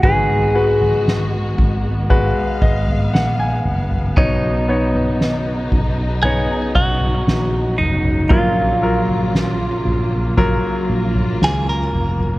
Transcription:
Already playing: D#3 G#3
0.03 G#1 G#2 G#3 B3 F#4 G#4 B4, kick, floor tom
0.55 G#3 F#4 B4
0.81 floor tom
1.08 snare
1.35 F#4
1.58 G#1, kick, floor tom
2.09 G#3 F#4 B4 F5, kick, floor tom
2.62 G#1 D#5, kick
2.88 floor tom
3.13 A#1 F#5, snare
3.39 G#5
3.65 F#1, floor tom
3.91 floor tom
4.17 B1 B2 C#3 F#3 B3 D#4 C#5, kick, floor tom
4.68 B3 D#4 C#5
4.95 floor tom
5.21 snare
5.72 B1, kick, floor tom
6.22 B3 D#4 G#4 C#5, floor tom
6.75 B1 F#4, kick
7.01 floor tom
7.27 A#1, snare
7.78 F1 D#4, floor tom
8.05 floor tom
8.30 A#1 A#2 F#3 A#3 F4 A#4, kick, floor tom
8.82 F#3 F4 A#4
9.09 floor tom
9.35 snare
9.86 A#1, floor tom
10.37 F#3 F4 A#4, kick, floor tom
10.90 A#1
11.15 floor tom
11.41 C#2 G#4, snare
11.69 A#4
11.93 F1, floor tom
12.18 floor tom

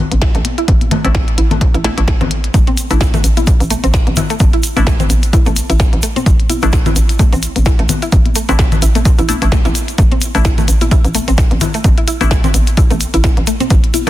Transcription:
0.11 A1, closed hi-hat, high conga
0.22 E4, kick, snare, closed hi-hat
0.35 A1 A3, closed hi-hat
0.45 closed hi-hat, high conga
0.58 E4, closed hi-hat
0.68 A1, kick, closed hi-hat
0.81 closed hi-hat, high conga
0.91 A3, closed hi-hat, low conga
1.04 A1 A3 C4 D4 E4, closed hi-hat
1.15 kick, snare, closed hi-hat, high conga
1.28 closed hi-hat
1.38 A1 E4, closed hi-hat
1.51 A3, closed hi-hat, high conga, low conga
1.61 kick, closed hi-hat
1.74 A1 E4, closed hi-hat
1.84 A3 D4 E4, snare, closed hi-hat, high conga
1.98 A1 A3 D4 E4, closed hi-hat
2.08 A3, kick, snare, closed hi-hat
2.21 A1 C4, closed hi-hat, high conga, low conga
2.31 closed hi-hat
2.44 closed hi-hat
2.54 A1 A3, kick, closed hi-hat, shaker
2.67 C4, closed hi-hat, high conga
2.77 closed hi-hat, shaker
2.90 A1 A3 D4 E4, closed hi-hat, shaker
3.01 E4, kick, snare, closed hi-hat, high conga, shaker
3.14 A3, closed hi-hat, low conga, shaker
3.24 A1, closed hi-hat, shaker
3.37 E4, closed hi-hat, high conga, shaker
3.47 kick, closed hi-hat, shaker
3.60 A1, closed hi-hat, shaker
3.70 A3, closed hi-hat, high conga, shaker
3.84 A1 C4, closed hi-hat, shaker
3.94 kick, snare, closed hi-hat, shaker
4.07 A1, closed hi-hat, high conga
4.16 E4, closed hi-hat, low conga, shaker
4.30 A3, closed hi-hat, shaker
4.39 A1, kick, closed hi-hat, high conga, shaker
4.53 E4, closed hi-hat
4.63 closed hi-hat, shaker
4.76 A1 A3 D4 E4, closed hi-hat, high conga, shaker
4.87 A3, kick, snare, closed hi-hat, shaker
5.00 C4, closed hi-hat, low conga, shaker
5.10 A1, closed hi-hat, high conga, shaker
5.23 closed hi-hat, shaker
5.33 E4, kick, closed hi-hat, shaker
5.46 A1 A3, closed hi-hat, high conga, shaker
5.56 closed hi-hat, shaker
5.70 A1 E4, closed hi-hat, shaker
5.79 kick, snare, closed hi-hat, high conga, shaker
5.93 A1, closed hi-hat
6.02 A3, closed hi-hat, shaker
6.16 C4, closed hi-hat, high conga, shaker
6.26 A1, kick, closed hi-hat, shaker
6.40 closed hi-hat
6.50 E4, closed hi-hat, high conga, shaker
6.62 A1 A3 D4 E4, closed hi-hat, shaker
6.73 kick, snare, closed hi-hat, shaker
6.86 E4, closed hi-hat, high conga, low conga, shaker
6.96 A1, closed hi-hat, shaker
7.09 closed hi-hat, shaker
7.19 A3, kick, closed hi-hat, high conga, shaker
7.33 A1 C4, closed hi-hat, shaker
7.42 closed hi-hat, shaker
7.56 A1, closed hi-hat, high conga, shaker
7.65 E4, kick, snare, closed hi-hat, shaker
7.79 A1 A3, closed hi-hat
7.89 closed hi-hat, high conga, low conga, shaker
8.02 E4, closed hi-hat, shaker
8.12 A1, kick, closed hi-hat, shaker
8.26 closed hi-hat, high conga
8.35 A3, closed hi-hat, shaker
8.49 A1 A3 C4 D4 E4, closed hi-hat, shaker
8.59 kick, snare, closed hi-hat, high conga, shaker
8.72 closed hi-hat, low conga, shaker
8.82 A1 E4, closed hi-hat, shaker
8.95 A3, closed hi-hat, high conga, shaker
9.05 kick, closed hi-hat, shaker
9.18 A1 E4, closed hi-hat, shaker
9.29 A3 D4 E4, closed hi-hat, high conga, shaker
9.42 A1 A3 D4 E4, closed hi-hat, shaker
9.52 A3, kick, snare, closed hi-hat, shaker
9.65 A1 E4, closed hi-hat, high conga, shaker
9.75 closed hi-hat, shaker
9.88 closed hi-hat, shaker
9.98 A1 A3, kick, closed hi-hat, shaker
10.12 C4, closed hi-hat, high conga
10.21 closed hi-hat, shaker
10.35 A1 A3 D4 E4, closed hi-hat, shaker
10.45 E4, kick, snare, closed hi-hat, high conga, shaker
10.58 A3, closed hi-hat, low conga, shaker
10.68 A1, closed hi-hat, shaker
10.81 E4, closed hi-hat, high conga, shaker
10.91 E4, kick, closed hi-hat, shaker
11.05 A1, closed hi-hat, shaker
11.15 A3, closed hi-hat, high conga, shaker
11.28 A1 C4, closed hi-hat, shaker
11.38 kick, snare, closed hi-hat, shaker
11.51 A1, closed hi-hat, high conga
11.61 E4, closed hi-hat, low conga, shaker
11.74 A3, closed hi-hat, shaker
11.84 A1, kick, closed hi-hat, high conga, shaker
11.98 E4, closed hi-hat
12.08 E4, closed hi-hat, shaker
12.21 A1 A3 D4 E4, closed hi-hat, high conga, shaker
12.31 A3, kick, snare, closed hi-hat, shaker
12.44 C4, closed hi-hat, low conga, shaker
12.54 A1, closed hi-hat, high conga, shaker
12.67 closed hi-hat, shaker
12.77 E4, kick, closed hi-hat, shaker
12.91 A1 A3, closed hi-hat, high conga, shaker
13.00 closed hi-hat, shaker
13.14 A1 E4, closed hi-hat, shaker
13.24 E4, kick, snare, closed hi-hat, high conga, shaker
13.37 A1, closed hi-hat
13.47 A3, closed hi-hat, shaker
13.60 C4, closed hi-hat, high conga, shaker
13.70 A1, kick, closed hi-hat, shaker
13.84 closed hi-hat
13.94 E4, closed hi-hat, high conga, shaker
14.07 A1 A3 D4 E4, shaker

